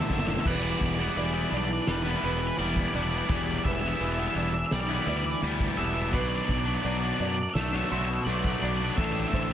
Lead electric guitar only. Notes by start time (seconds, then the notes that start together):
0.13 E5
0.19 E5
0.27 E5
0.34 E5
0.40 E5
0.47 D5
0.55 D5
0.63 D5
0.70 D5
0.78 D5
0.86 D5
0.94 D5
1.01 D5
1.08 D5
1.17 D5
1.24 D5
1.34 D5
1.41 D5
1.51 D5
1.57 D5
1.65 D5
1.73 D5
1.82 D5
1.87 B4
1.95 B4
2.03 B4
2.10 B4
2.17 B4
2.24 B4
2.32 B4
2.39 B4
2.47 B4
2.58 D5
2.66 D5
2.73 D5
2.81 D5
2.88 D5
2.95 D5
3.03 D5
3.10 D5
3.18 D5
3.29 D5
3.37 D5
3.45 D5
3.51 D5
3.58 D5
3.65 E5
3.73 E5
3.80 E5
3.88 E5
3.95 E5
4.04 E5
4.12 E5
4.20 E5
4.28 E5
4.35 E5
4.43 E5
4.50 E5
4.59 E5
4.66 E5
4.73 D5
4.80 D5
4.87 D5
4.94 D5
5.02 D5
5.09 D5
5.17 D5
5.24 D5
5.31 D5
5.77 E5
5.84 E5
5.93 E5
6.02 E5
6.14 D5
6.21 D5
6.29 D5
6.36 D5
6.45 D5
6.52 D5
6.59 D5
6.68 D5
6.75 D5
6.84 D5
6.92 D5
6.98 D5
7.05 D5
7.14 D5
7.21 D5
7.29 D5
7.35 D5
7.43 D5
7.50 D5
7.54 E5
7.61 E5
7.69 E5
7.76 E5
7.84 E5
7.90 E5
7.99 E5
8.05 E5
8.14 E5
8.21 D5 E5
8.32 D5
8.39 D5
8.47 D5
8.54 D5
8.61 D5
8.69 D5
8.77 D5
8.84 D5
8.91 D5
8.97 E5
9.04 E5
9.12 E5
9.20 E5
9.28 E5
9.36 E5
9.43 E5